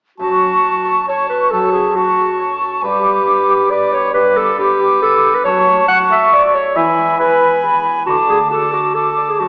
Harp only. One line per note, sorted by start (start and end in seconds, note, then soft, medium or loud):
0.19 1.51 F#2 soft
0.41 1.74 C#4 soft
0.63 1.95 F#4 soft
0.85 1.29 A4 soft
1.08 2.38 C#5 soft
1.30 2.17 A4 soft
1.52 2.86 F#2 soft
1.75 2.86 C#4 soft
1.96 2.86 F#4 soft
2.18 2.60 A4 soft
2.40 2.85 C#5 soft
2.61 2.85 A4 soft
2.84 4.13 G2 soft
3.05 4.34 B3 soft
3.27 4.57 D4 soft
3.48 3.91 G4 soft
3.71 5.01 B4 soft
3.92 4.79 G4 soft
4.14 5.47 G2 soft
4.36 5.47 B3 soft
4.58 5.47 D4 soft
4.80 5.22 G4 soft
5.02 5.47 B4 soft
5.23 5.47 G4 soft
5.45 6.78 F#2 soft
5.66 6.78 A3 soft
5.89 6.30 F#4 soft
6.10 6.53 A4 soft
6.31 6.77 F#4 soft
6.54 6.78 A4 soft
6.76 8.08 E2 medium
6.98 8.08 G#3 soft
7.20 7.62 G#4 soft
7.41 7.84 B4 soft
7.64 8.09 G#4 soft
7.85 8.09 B4 soft
8.06 9.41 D3 soft
8.29 9.48 A3 soft
8.50 9.48 F#4 soft
8.73 9.16 D5 soft
8.95 9.48 A4 soft
9.17 9.42 D5 soft
9.39 9.48 F#2 soft